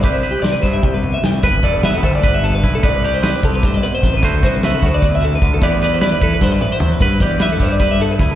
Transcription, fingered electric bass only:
\new Staff \with { instrumentName = "Fingered electric bass" } { \clef bass \time 7/8 \key c \lydian \tempo 4 = 151 c,8 r8 c8 g,8 c,4 c,8 | g,,8 e,,4 g,,8 g,,4 b,,8 | c,4. c,8 g,8 r8 a,,8 | d,8 c,4 d,8 d,4 d,8 |
e,4. e,8 g,8 r8 e,8 | g,8 e,4 g,8 g,4 d,8 | }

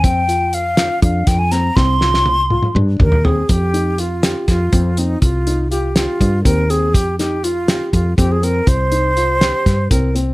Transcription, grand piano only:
\new Staff \with { instrumentName = "Grand piano" } { \time 7/8 \key f \dorian \tempo 4 = 122 c'8 f'4 f'8 d'4 c'8 | c'8 f'4 f'8 d'4 c'8 | r8 ees'8 f'8 g'4 c'8 c'8 | r8 ees'8 f'8 g'4 c'8 c'8 |
r8 ees'8 f'8 g'4 c'8 c'8 | r8 ees'8 f'8 g'4 c'8 c'8 | }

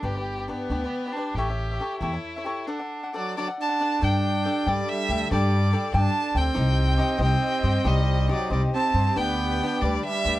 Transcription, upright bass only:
\new Staff \with { instrumentName = "Upright bass" } { \clef bass \time 6/8 \key d \major \tempo 4. = 92 g,,4. d,8 r4 | a,,4. e,8 r4 | r2. | \key g \major g,4. g,8 r8 d,8 |
g,4. g,8 r8 d,8 | c,4. c,8 r8 g,8 | c,4. c,8 r8 g,8 | d,4. d,8 r8 d,8 | }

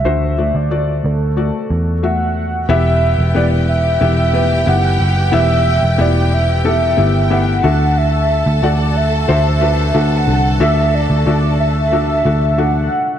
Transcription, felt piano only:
<<
  \new Staff \with { instrumentName = "Felt piano" } { \time 4/4 \key e \minor \tempo 4 = 91 <a fis' c''>8 <a fis' d''>8 <a fis' d''>4 <a fis' d''>4 <a fis' e''>4 | <b e' g' e''>4 <b e' g' b'>4 <b e' g' e''>8 <b e' g' b'>8 <b e' g' e''>4 | <b e' g' e''>4 <b e' g' e''>4 <b e' g' a'>8 <b e' g' e''>8 <b e' g' e''>8 <d' fis' a' e''>8~ | <d' fis' a' e''>4 <d' fis' a' fis''>4 <d' fis' a' c''>8 <d' fis' a' b'>8 <d' fis' a' e''>4 |
<d' fis' a' e''>4 <d' fis' a' e''>4 <d' fis' a' e''>8 <d' fis' a' e''>8 <d' fis' a' e''>4 | }
  \new Staff \with { instrumentName = "Felt piano" } { \clef bass \time 4/4 \key e \minor d4. r2 r8 | e4. r2 r8 | e4. r2 d8~ | d4 r2 r8 d8~ |
d4 r2. | }
>>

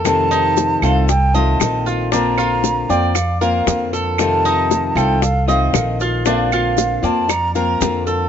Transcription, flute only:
\new Staff \with { instrumentName = "Flute" } { \time 4/4 \key bes \major \tempo 4 = 116 a''4. f''8 g''8 a''4 r8 | bes''4. g''8 f''8 f''4 r8 | a''4. g''8 f''8 f''4 r8 | f''4. a''8 bes''8 bes''4 r8 | }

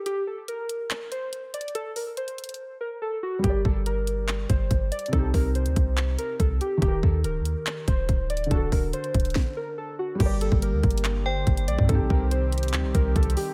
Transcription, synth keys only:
\new Staff \with { instrumentName = "Synth keys" } { \time 4/4 \key g \minor \tempo 4 = 142 g'8 a'8 bes'4. c''4 d''8 | a'8 bes'8 c''4. bes'8 a'8 fis'8 | g'8 a'8 bes'4. c''4 d''8 | a'8 bes'8 c''4. bes'8 a'8 g'8 |
g'8 a'8 bes'4. c''4 d''8 | a'8 bes'8 c''4. bes'8 a'8 fis'8 | g'8 a'8 bes'4. c''4 d''8 | a'8 bes'8 c''4. bes'8 a'8 g'8 | }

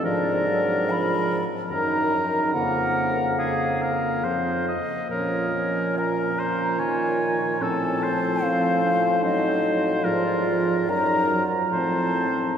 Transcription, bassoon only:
\new Staff \with { instrumentName = "Bassoon" } { \clef bass \time 3/4 \key bes \minor \tempo 4 = 72 aes,4. r8 ges,4 | f,2 f,8 r8 | bes,2. | a,2. |
aes,4 ges,8 r8 a,4 | }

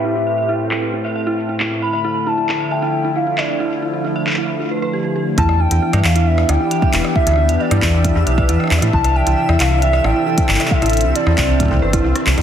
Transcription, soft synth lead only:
\new Staff \with { instrumentName = "Soft synth lead" } { \time 4/4 \key e \phrygian \tempo 4 = 135 e''2~ e''8 r4. | b''4 a''4 g''4 f''8 d''8~ | d''8 r2. r8 | a''8 g''4 f''8 e''8 g''4. |
e''4 d''2 r4 | a''8 g''4 f''8 e''8 g''4. | e''4 d''2 r4 | }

